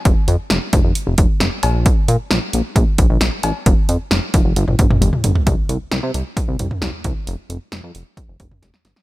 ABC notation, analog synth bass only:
X:1
M:4/4
L:1/16
Q:1/4=133
K:F
V:1 name="Analog synth bass" clef=bass
F,,, z F,, z F,,, z F,,, F,,, z F,,, F,,, z F,,, z B,,,2- | B,,, z B,, z B,,, z B,,, z B,,, z B,,, B,,, B,,, z A,,, z | F,,, z F,, z F,,, z F,,, F,,, G,,, G,,, G,,, z G,,, z G,,, z | C,, z C,, z C,, C, C,, z2 C,, C,, z C,, z C,, z |
F,,, z F,,, z F,,, F,, F,,, z2 F,,, F,,, z F,,, z G,,, z |]